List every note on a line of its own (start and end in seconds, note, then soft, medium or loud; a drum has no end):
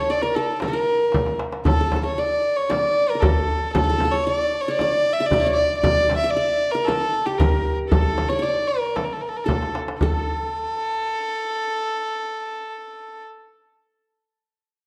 0.00 0.29 A4 medium
0.00 0.12 C#5 medium
0.00 0.16 C#5 medium
0.00 0.39 E5 medium
0.09 1.08 D5 medium
0.09 0.23 D5 medium
0.09 darbuka ka soft
0.22 0.37 A#4 medium
0.22 0.42 A#4 medium
0.22 darbuka ka soft
0.35 0.61 A4 medium
0.35 0.68 A4 medium
0.60 0.75 A4 medium
0.60 0.73 A#4 medium
0.60 darbuka tek medium
0.60 frame drum medium
0.68 0.79 A4 medium
0.73 1.71 A#4 medium
0.73 1.36 A#4 medium
0.73 darbuka ka soft
0.87 darbuka ka soft
1.00 darbuka ka soft
1.12 darbuka tek medium
1.12 frame drum medium
1.26 darbuka ka medium
1.39 darbuka tek medium
1.52 darbuka ka medium
1.65 1.71 A4 medium
1.65 2.02 A4 medium
1.65 darbuka dum medium
1.65 frame drum medium
1.71 1.80 A4 soft
1.81 1.86 A4 medium
1.87 1.96 A4 soft
1.92 darbuka tek medium
1.92 frame drum medium
1.96 2.03 A4 medium
2.04 3.21 A4 soft
2.04 2.20 C#5 medium
2.18 2.69 D5 medium
2.18 2.58 D5 medium
2.56 2.71 C#5 medium
2.70 3.68 D5 medium
2.70 3.11 D5 medium
2.70 darbuka tek medium
2.70 frame drum medium
3.10 3.22 A#4 medium
3.15 3.28 A#4 soft
3.20 3.73 A4 medium
3.20 3.74 A4 medium
3.20 frame drum medium
3.20 darbuka dum medium
3.74 4.13 A4 medium
3.74 3.83 A4 medium
3.74 frame drum medium
3.74 darbuka dum medium
3.84 3.89 A4 medium
3.90 3.98 A4 medium
3.98 4.04 A4 medium
3.98 darbuka tek medium
3.98 frame drum medium
4.05 4.13 A4 medium
4.11 5.31 A4 medium
4.11 4.24 C#5 medium
4.24 4.36 C#5 medium
4.24 4.74 D5 medium
4.36 4.63 D5 medium
4.61 4.73 C#5 medium
4.68 4.87 C#5 medium
4.74 5.15 D5 medium
4.79 5.33 D5 medium
4.79 darbuka tek medium
4.79 frame drum medium
5.13 5.27 E5 medium
5.20 6.12 E5 medium
5.26 5.52 D5 loud
5.31 5.46 D5 medium
5.31 darbuka dum medium
5.31 frame drum medium
5.40 5.52 C#5 medium
5.46 5.83 D5 medium
5.53 5.78 D5 medium
5.78 6.17 D5 loud
5.83 6.36 D5 medium
5.83 darbuka dum medium
5.83 frame drum medium
6.09 darbuka tek medium
6.09 frame drum medium
6.17 6.32 E5 medium
6.24 7.16 E5 medium
6.30 6.73 D5 medium
6.36 7.35 D5 medium
6.71 6.86 A#4 medium
6.71 6.94 A#4 medium
6.85 7.27 A4 medium
6.85 7.46 A4 medium
6.85 darbuka tek medium
6.85 frame drum medium
7.26 7.40 G4 medium
7.26 8.52 G4 medium
7.38 7.78 A#4 medium
7.38 7.97 A#4 medium
7.38 darbuka dum medium
7.38 frame drum medium
7.65 darbuka ka soft
7.90 8.30 A4 medium
7.90 9.09 A4 medium
7.90 frame drum medium
7.90 darbuka dum medium
8.18 darbuka tek medium
8.18 frame drum medium
8.29 8.43 C#5 medium
8.29 8.38 C#5 medium
8.29 8.43 D5 medium
8.29 darbuka ka soft
8.39 8.49 C#5 medium
8.39 8.69 D5 medium
8.43 9.42 D5 medium
8.43 darbuka ka soft
8.67 8.97 A#4 medium
8.96 9.06 A4 medium
8.96 darbuka tek medium
8.96 frame drum medium
9.04 9.14 A#4 medium
9.11 9.23 A4 medium
9.11 darbuka ka soft
9.21 9.30 A#4 medium
9.21 darbuka ka soft
9.28 9.38 A4 medium
9.37 9.46 A#4 medium
9.44 9.74 A4 medium
9.44 10.02 A4 medium
9.48 darbuka tek medium
9.48 frame drum medium
9.62 darbuka ka medium
9.75 darbuka tek medium
9.88 darbuka ka medium
10.01 13.23 A4 medium
10.01 13.25 A4 medium
10.01 frame drum medium
10.01 darbuka dum medium